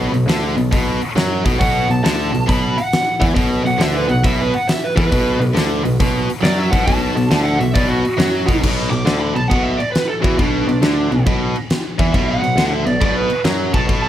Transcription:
Already playing: picked electric bass B1, distorted electric guitar B2
0.11 picked electric bass B1, distorted electric guitar B2, open hi-hat
0.26 picked electric bass D2, distorted electric guitar D3, snare, open hi-hat
0.56 picked electric bass B1, distorted electric guitar B2, open hi-hat
0.71 picked electric bass B1, distorted electric guitar B2, kick, open hi-hat
1.01 open hi-hat
1.16 picked electric bass F#2, distorted electric guitar F#3, snare, open hi-hat
1.45 picked electric bass B1, distorted electric guitar B2, kick, open hi-hat
1.60 picked electric bass B1, distorted electric guitar B2, lead electric guitar F#5, kick, open hi-hat
1.90 picked electric bass B1, distorted electric guitar B2, lead electric guitar A5, open hi-hat
2.04 picked electric bass D2, distorted electric guitar D3, lead electric guitar A5, snare, open hi-hat
2.33 picked electric bass B1, distorted electric guitar B2, open hi-hat
2.47 picked electric bass B1, distorted electric guitar B2, lead electric guitar B5, kick, open hi-hat
2.77 lead electric guitar F#5, open hi-hat
2.93 snare, open hi-hat
3.20 picked electric bass E2, distorted electric guitar E3, kick, open hi-hat
3.35 picked electric bass B1, distorted electric guitar B2, kick, open hi-hat
3.64 picked electric bass B1, distorted electric guitar B2, lead electric guitar F#5, open hi-hat
3.79 picked electric bass D2, distorted electric guitar D3, lead electric guitar E5, snare, open hi-hat
3.94 lead electric guitar B4
4.09 picked electric bass B1, distorted electric guitar B2, lead electric guitar F#5, open hi-hat
4.23 picked electric bass B1, distorted electric guitar B2, lead electric guitar E5, kick, open hi-hat
4.39 lead electric guitar B4
4.54 lead electric guitar F#5, open hi-hat
4.69 lead electric guitar E5, snare, open hi-hat
4.84 lead electric guitar B4
4.96 picked electric bass E2, distorted electric guitar E3, lead electric guitar B4, kick, open hi-hat
5.11 picked electric bass B1, distorted electric guitar B2, kick, open hi-hat
5.40 picked electric bass B1, distorted electric guitar B2, open hi-hat
5.54 picked electric bass D2, distorted electric guitar D3, snare, open hi-hat
5.84 picked electric bass B1, distorted electric guitar B2, open hi-hat
6.00 picked electric bass B1, distorted electric guitar B2, kick, open hi-hat
6.30 open hi-hat
6.42 picked electric bass F#2, distorted electric guitar F#3, lead electric guitar D5, snare, open hi-hat
6.58 lead electric guitar E5
6.70 picked electric bass B1, distorted electric guitar B2, lead electric guitar F#5, kick, open hi-hat
6.85 picked electric bass B1, distorted electric guitar B2, lead electric guitar A5, kick, open hi-hat
7.15 picked electric bass B1, distorted electric guitar B2, open hi-hat
7.30 picked electric bass D2, distorted electric guitar D3, snare, open hi-hat
7.44 lead electric guitar F#5
7.59 picked electric bass B1, distorted electric guitar B2, lead electric guitar E5, open hi-hat
7.74 picked electric bass B1, distorted electric guitar B2, lead electric guitar D5, kick, open hi-hat
7.88 lead electric guitar F#4
8.05 open hi-hat
8.18 picked electric bass F#2, distorted electric guitar F#3, snare, open hi-hat
8.47 picked electric bass B1, distorted electric guitar B2, kick, open hi-hat
8.62 picked electric bass B1, distorted electric guitar B2, kick, crash
8.90 picked electric bass B1, distorted electric guitar B2, lead electric guitar D6, crash
9.05 picked electric bass D2, distorted electric guitar D3, snare, crash
9.19 lead electric guitar B5
9.35 picked electric bass B1, distorted electric guitar B2, lead electric guitar A5, crash
9.48 picked electric bass B1, distorted electric guitar B2, lead electric guitar F#5, kick, crash
9.63 lead electric guitar E5
9.77 lead electric guitar D5, crash
9.92 lead electric guitar B4, snare, crash
10.07 lead electric guitar A4
10.22 picked electric bass E2, distorted electric guitar E3, lead electric guitar F#4, kick, crash
10.38 picked electric bass B1, distorted electric guitar B2, lead electric guitar D4, kick, crash
10.67 picked electric bass B1, distorted electric guitar B2, crash
10.81 picked electric bass D2, distorted electric guitar D3, snare, crash
11.11 picked electric bass B1, distorted electric guitar B2, crash
11.26 picked electric bass B1, distorted electric guitar B2, kick, crash
11.56 crash
11.70 snare, crash
11.99 picked electric bass E2, distorted electric guitar E3, kick, crash
12.13 picked electric bass B1, distorted electric guitar B2, lead electric guitar E5, kick, crash
12.29 lead electric guitar F#5
12.42 picked electric bass B1, distorted electric guitar B2, crash
12.56 picked electric bass D2, distorted electric guitar D3, snare, crash
12.72 lead electric guitar E5
12.85 picked electric bass B1, distorted electric guitar B2, lead electric guitar D5, crash
13.01 picked electric bass B1, distorted electric guitar B2, lead electric guitar D5, kick, crash
13.16 lead electric guitar B4
13.30 crash
13.44 picked electric bass F#2, distorted electric guitar F#3, snare, crash
13.74 picked electric bass B1, distorted electric guitar B2, lead electric guitar A5, kick, crash
13.88 picked electric bass B1, distorted electric guitar B2, kick, crash
14.02 lead electric guitar A5

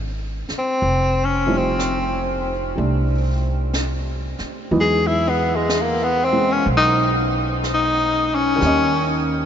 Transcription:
Already playing: upright bass G#1, grand piano C#3 E3 G#3 D#4 B4
0.49 muted upright bass stroke, snare
0.59 tenor saxophone C4
0.82 upright bass F1, brush sweep
1.24 tenor saxophone C#4
1.46 grand piano F3 G3 A3 C4 D#4
1.58 tenor saxophone C4
1.79 brush sweep, snare, hi-hat pedal
2.75 upright bass C2, grand piano G3 A3 D4, brush sweep
3.73 brush sweep, snare, hi-hat pedal
4.39 muted upright bass stroke, snare
4.71 upright bass E2, grand piano E3 F#3 G#3 B3 D#4, brush sweep
4.81 tenor saxophone G#4
5.07 tenor saxophone E4
5.29 tenor saxophone B3
5.56 tenor saxophone G#3
5.69 brush sweep, snare, hi-hat pedal
5.82 tenor saxophone A#3
6.04 tenor saxophone B3
6.25 tenor saxophone C4
6.33 grand piano G#3 B3 C#4 G#4
6.52 tenor saxophone C#4
6.66 upright bass B1, brush sweep
6.77 tenor saxophone D#4
7.64 brush sweep, snare, hi-hat pedal
7.74 tenor saxophone D#4
8.35 tenor saxophone C#4
8.56 grand piano D#3 G3
8.61 upright bass D#2, grand piano A#3 C#4, brush sweep, snare
8.67 grand piano D#5

